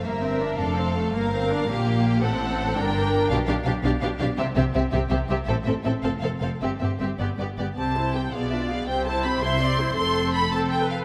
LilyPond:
<<
  \new Staff \with { instrumentName = "Violin section" } { \time 6/8 \key g \dorian \tempo 4. = 109 e''4. f''4. | f''2. | fis''4. g''4. | \key c \major f''8 f''8 f''8 f''8 f''8 f''8 |
e''8 e''8 e''8 e''8 e''8 e''8 | e''8 e''8 e''8 f''8 f''8 f''8 | e''8 e''8 e''8 d''8 d''8 d''8 | a''4 g''8 f''8 e''8 f''8 |
g''8 a''8 b''8 c'''4. | c'''4 b''8 a''8 g''8 f''8 | }
  \new Staff \with { instrumentName = "Violin section" } { \time 6/8 \key g \dorian bes'4. a'4. | bes'4. g'4. | a'4. bes'4. | \key c \major g'8 g'8 g'8 g'8 g'8 g'8 |
g'8 g'8 g'8 g'8 g'8 g'8 | a'8 a'8 a'8 a'8 a'8 a'8 | g'8 g'8 g'8 g'8 g'8 g'8 | r4. d''4. |
c''4. e''8 d''8 c''8 | a'2. | }
  \new Staff \with { instrumentName = "Viola section" } { \time 6/8 \key g \dorian << { r2. | r2. | r2. | \key c \major r2. |
r2. | r2. | r2. | g'8 c''8 g'8 gis'8 f'8 gis'8 |
g'8 c''8 g'8 c''8 g'8 c''8 | a'4. a'8. b'8. | } \\ { bes8 c'8 d'8 d'8 c'8 a8 | bes8 c'8 d'8 bes4. | c'4. d'4. | d'8 d'8 d'8 d'8 d'8 d'8 |
c'8 c'8 c'8 c'8 c'8 c'8 | c'8 c'8 c'8 c'8 c'8 c'8 | c'8 c'8 c'8 b8 b8 b8 | c'8 e'8 c'8 b8 d'8 b8 |
c'8 e'8 c'8 e'8 c'8 e'8 | c'4. c'4. | } >> }
  \new Staff \with { instrumentName = "Cello section" } { \clef bass \time 6/8 \key g \dorian g,4. f,4. | g,4. bes,4. | a,4. g,4. | \key c \major b,8 b,8 b,8 b,8 b,8 b,8 |
c8 c8 c8 c8 c8 c8 | a,8 a,8 a,8 f,8 f,8 f,8 | g,8 g,8 g,8 g,8 g,8 g,8 | c4. b,4. |
c4. c4. | f,2. | }
  \new Staff \with { instrumentName = "Double bass section" } { \clef bass \time 6/8 \key g \dorian g,,4. f,,4. | g,,4. bes,,4. | a,,4. g,,4. | \key c \major b,,8 b,,8 b,,8 b,,8 b,,8 b,,8 |
c,8 c,8 c,8 c,8 c,8 c,8 | a,,8 a,,8 a,,8 f,,8 f,,8 f,,8 | g,,8 g,,8 g,,8 g,,8 g,,8 g,,8 | c,4. b,,4. |
c,4. c,4. | f,,2. | }
>>